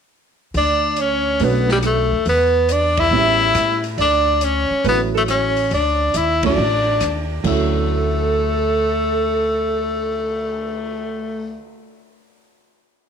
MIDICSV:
0, 0, Header, 1, 8, 480
1, 0, Start_track
1, 0, Key_signature, 2, "major"
1, 0, Tempo, 430725
1, 607, Time_signature, 4, 2, 24, 8
1, 14590, End_track
2, 0, Start_track
2, 0, Title_t, "Alto saxophone"
2, 0, Program_c, 0, 65
2, 632, Note_on_c, 0, 74, 77
2, 1100, Note_on_c, 0, 73, 73
2, 1116, Note_off_c, 0, 74, 0
2, 1572, Note_on_c, 0, 71, 70
2, 1589, Note_off_c, 0, 73, 0
2, 1889, Note_off_c, 0, 71, 0
2, 1902, Note_on_c, 0, 67, 63
2, 1970, Note_off_c, 0, 67, 0
2, 2069, Note_on_c, 0, 69, 64
2, 2504, Note_off_c, 0, 69, 0
2, 2538, Note_on_c, 0, 71, 78
2, 3002, Note_on_c, 0, 74, 80
2, 3018, Note_off_c, 0, 71, 0
2, 3326, Note_on_c, 0, 76, 87
2, 3343, Note_off_c, 0, 74, 0
2, 4287, Note_off_c, 0, 76, 0
2, 4440, Note_on_c, 0, 74, 78
2, 4926, Note_on_c, 0, 73, 78
2, 4943, Note_off_c, 0, 74, 0
2, 5389, Note_off_c, 0, 73, 0
2, 5395, Note_on_c, 0, 71, 74
2, 5543, Note_off_c, 0, 71, 0
2, 5734, Note_on_c, 0, 69, 68
2, 5805, Note_off_c, 0, 69, 0
2, 5894, Note_on_c, 0, 73, 63
2, 6340, Note_off_c, 0, 73, 0
2, 6380, Note_on_c, 0, 74, 73
2, 6849, Note_on_c, 0, 76, 71
2, 6866, Note_off_c, 0, 74, 0
2, 7164, Note_off_c, 0, 76, 0
2, 7170, Note_on_c, 0, 74, 73
2, 8090, Note_off_c, 0, 74, 0
2, 8293, Note_on_c, 0, 69, 78
2, 12884, Note_off_c, 0, 69, 0
2, 14590, End_track
3, 0, Start_track
3, 0, Title_t, "Grand piano"
3, 0, Program_c, 1, 0
3, 1574, Note_on_c, 1, 57, 55
3, 1576, Note_on_c, 1, 61, 51
3, 1581, Note_on_c, 1, 66, 58
3, 1582, Note_on_c, 1, 62, 47
3, 2305, Note_off_c, 1, 57, 0
3, 2306, Note_off_c, 1, 61, 0
3, 2309, Note_off_c, 1, 62, 0
3, 2309, Note_off_c, 1, 66, 0
3, 3474, Note_on_c, 1, 55, 57
3, 3478, Note_on_c, 1, 59, 50
3, 3479, Note_on_c, 1, 64, 64
3, 3484, Note_on_c, 1, 61, 52
3, 4217, Note_off_c, 1, 55, 0
3, 4219, Note_off_c, 1, 59, 0
3, 4220, Note_off_c, 1, 64, 0
3, 4222, Note_off_c, 1, 61, 0
3, 5412, Note_on_c, 1, 57, 44
3, 5415, Note_on_c, 1, 54, 57
3, 5419, Note_on_c, 1, 61, 49
3, 5425, Note_on_c, 1, 64, 56
3, 6149, Note_off_c, 1, 57, 0
3, 6150, Note_off_c, 1, 54, 0
3, 6152, Note_off_c, 1, 61, 0
3, 6155, Note_off_c, 1, 64, 0
3, 7178, Note_on_c, 1, 54, 63
3, 7182, Note_on_c, 1, 57, 55
3, 7186, Note_on_c, 1, 61, 58
3, 7188, Note_on_c, 1, 64, 68
3, 7320, Note_off_c, 1, 54, 0
3, 7323, Note_off_c, 1, 57, 0
3, 7325, Note_off_c, 1, 61, 0
3, 7326, Note_off_c, 1, 64, 0
3, 8282, Note_on_c, 1, 38, 66
3, 8291, Note_on_c, 1, 50, 59
3, 8293, Note_on_c, 1, 54, 54
3, 8306, Note_on_c, 1, 61, 58
3, 8313, Note_on_c, 1, 64, 71
3, 12917, Note_off_c, 1, 38, 0
3, 12926, Note_off_c, 1, 50, 0
3, 12928, Note_off_c, 1, 54, 0
3, 12941, Note_off_c, 1, 61, 0
3, 12948, Note_off_c, 1, 64, 0
3, 14590, End_track
4, 0, Start_track
4, 0, Title_t, "Tenor saxophone"
4, 0, Program_c, 2, 66
4, 640, Note_on_c, 2, 62, 84
4, 1126, Note_on_c, 2, 61, 79
4, 1143, Note_off_c, 2, 62, 0
4, 1605, Note_on_c, 2, 59, 82
4, 1622, Note_off_c, 2, 61, 0
4, 1905, Note_off_c, 2, 59, 0
4, 1919, Note_on_c, 2, 55, 78
4, 1983, Note_off_c, 2, 55, 0
4, 2072, Note_on_c, 2, 57, 85
4, 2506, Note_off_c, 2, 57, 0
4, 2552, Note_on_c, 2, 59, 90
4, 3030, Note_on_c, 2, 62, 91
4, 3046, Note_off_c, 2, 59, 0
4, 3341, Note_on_c, 2, 64, 106
4, 3358, Note_off_c, 2, 62, 0
4, 4295, Note_off_c, 2, 64, 0
4, 4468, Note_on_c, 2, 62, 89
4, 4950, Note_on_c, 2, 61, 81
4, 4967, Note_off_c, 2, 62, 0
4, 5420, Note_off_c, 2, 61, 0
4, 5443, Note_on_c, 2, 59, 81
4, 5579, Note_off_c, 2, 59, 0
4, 5765, Note_on_c, 2, 57, 83
4, 5829, Note_off_c, 2, 57, 0
4, 5909, Note_on_c, 2, 61, 82
4, 6348, Note_off_c, 2, 61, 0
4, 6401, Note_on_c, 2, 62, 81
4, 6878, Note_on_c, 2, 64, 79
4, 6895, Note_off_c, 2, 62, 0
4, 7187, Note_off_c, 2, 64, 0
4, 7200, Note_on_c, 2, 62, 82
4, 8105, Note_off_c, 2, 62, 0
4, 8319, Note_on_c, 2, 57, 79
4, 12910, Note_off_c, 2, 57, 0
4, 14590, End_track
5, 0, Start_track
5, 0, Title_t, "Upright bass"
5, 0, Program_c, 3, 32
5, 604, Note_on_c, 3, 38, 83
5, 1520, Note_off_c, 3, 38, 0
5, 1562, Note_on_c, 3, 35, 81
5, 2319, Note_off_c, 3, 35, 0
5, 2353, Note_on_c, 3, 38, 54
5, 2508, Note_off_c, 3, 38, 0
5, 2516, Note_on_c, 3, 40, 80
5, 3437, Note_off_c, 3, 40, 0
5, 3466, Note_on_c, 3, 33, 78
5, 3922, Note_off_c, 3, 33, 0
5, 3951, Note_on_c, 3, 45, 61
5, 4405, Note_off_c, 3, 45, 0
5, 4430, Note_on_c, 3, 38, 82
5, 5196, Note_off_c, 3, 38, 0
5, 5397, Note_on_c, 3, 33, 84
5, 6321, Note_off_c, 3, 33, 0
5, 6365, Note_on_c, 3, 38, 79
5, 6816, Note_off_c, 3, 38, 0
5, 6846, Note_on_c, 3, 39, 64
5, 7297, Note_off_c, 3, 39, 0
5, 7326, Note_on_c, 3, 33, 84
5, 7778, Note_off_c, 3, 33, 0
5, 7809, Note_on_c, 3, 39, 64
5, 8260, Note_off_c, 3, 39, 0
5, 8290, Note_on_c, 3, 38, 82
5, 12881, Note_off_c, 3, 38, 0
5, 14590, End_track
6, 0, Start_track
6, 0, Title_t, "Cymbal swell"
6, 8608, Note_on_c, 9, 59, 43
6, 12036, Note_off_c, 9, 59, 0
6, 14590, End_track
7, 0, Start_track
7, 0, Title_t, "Muted upright bass strokes"
7, 5238, Note_on_c, 9, 29, 36
7, 5350, Note_off_c, 9, 29, 0
7, 14590, End_track
8, 0, Start_track
8, 0, Title_t, "Drums"
8, 604, Note_on_c, 9, 46, 39
8, 716, Note_off_c, 9, 46, 0
8, 1075, Note_on_c, 9, 42, 53
8, 1186, Note_off_c, 9, 42, 0
8, 1555, Note_on_c, 9, 46, 42
8, 1667, Note_off_c, 9, 46, 0
8, 1879, Note_on_c, 9, 38, 38
8, 1991, Note_off_c, 9, 38, 0
8, 2034, Note_on_c, 9, 42, 43
8, 2039, Note_on_c, 9, 37, 57
8, 2146, Note_off_c, 9, 42, 0
8, 2150, Note_off_c, 9, 37, 0
8, 2514, Note_on_c, 9, 46, 42
8, 2625, Note_off_c, 9, 46, 0
8, 2995, Note_on_c, 9, 42, 48
8, 3106, Note_off_c, 9, 42, 0
8, 3313, Note_on_c, 9, 51, 66
8, 3318, Note_on_c, 9, 36, 70
8, 3425, Note_off_c, 9, 51, 0
8, 3429, Note_off_c, 9, 36, 0
8, 3952, Note_on_c, 9, 42, 52
8, 3957, Note_on_c, 9, 37, 57
8, 4064, Note_off_c, 9, 42, 0
8, 4068, Note_off_c, 9, 37, 0
8, 4277, Note_on_c, 9, 46, 38
8, 4388, Note_off_c, 9, 46, 0
8, 4435, Note_on_c, 9, 46, 38
8, 4546, Note_off_c, 9, 46, 0
8, 4914, Note_on_c, 9, 42, 50
8, 5026, Note_off_c, 9, 42, 0
8, 5399, Note_on_c, 9, 46, 42
8, 5511, Note_off_c, 9, 46, 0
8, 5885, Note_on_c, 9, 42, 48
8, 5890, Note_on_c, 9, 37, 52
8, 5997, Note_off_c, 9, 42, 0
8, 6001, Note_off_c, 9, 37, 0
8, 6202, Note_on_c, 9, 46, 34
8, 6313, Note_off_c, 9, 46, 0
8, 6362, Note_on_c, 9, 46, 38
8, 6473, Note_off_c, 9, 46, 0
8, 6842, Note_on_c, 9, 42, 55
8, 6954, Note_off_c, 9, 42, 0
8, 7164, Note_on_c, 9, 51, 72
8, 7166, Note_on_c, 9, 36, 82
8, 7276, Note_off_c, 9, 51, 0
8, 7278, Note_off_c, 9, 36, 0
8, 7805, Note_on_c, 9, 42, 47
8, 7810, Note_on_c, 9, 37, 53
8, 7917, Note_off_c, 9, 42, 0
8, 7921, Note_off_c, 9, 37, 0
8, 8291, Note_on_c, 9, 36, 53
8, 8294, Note_on_c, 9, 49, 52
8, 8402, Note_off_c, 9, 36, 0
8, 8406, Note_off_c, 9, 49, 0
8, 14590, End_track
0, 0, End_of_file